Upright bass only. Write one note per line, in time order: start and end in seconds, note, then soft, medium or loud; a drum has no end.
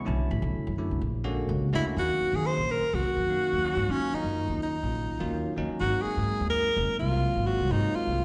0.08 0.18 B1 loud
0.31 0.41 A1 loud
0.42 0.53 B1 loud
0.56 muted upright bass stroke soft
0.67 0.88 F#2 medium
0.91 1.01 B1 medium
1.01 1.45 A#1 medium
1.49 1.70 C#2 loud
1.73 1.94 D2 medium
1.97 2.08 D#2 medium
2.21 muted upright bass stroke soft
2.32 2.54 D#3 medium
2.57 2.79 A#1 medium
2.81 muted upright bass stroke soft
2.93 3.04 C#2 medium
3.05 muted upright bass stroke soft
3.17 3.38 F#2 medium
3.53 3.74 D#2 medium
3.76 3.87 G#2 medium
3.88 3.99 D#3 medium
4.13 muted upright bass stroke soft
4.24 4.46 F#2 medium
4.48 4.81 D#2 medium
4.83 5.05 A#1 medium
5.09 muted upright bass stroke soft
5.21 5.42 D#2 medium
5.57 5.68 D#2 medium
5.69 muted upright bass stroke soft
5.81 5.91 G#1 medium
6.05 muted upright bass stroke soft
6.17 6.38 G#2 medium
6.40 6.62 D#2 medium
6.64 muted upright bass stroke soft
6.76 6.87 F#1 medium
6.89 muted upright bass stroke soft
7.00 7.22 C2 medium
7.35 7.57 G#1 medium
7.59 7.70 C2 medium
7.71 7.82 G#2 medium
7.94 muted upright bass stroke soft
8.06 8.25 C2 medium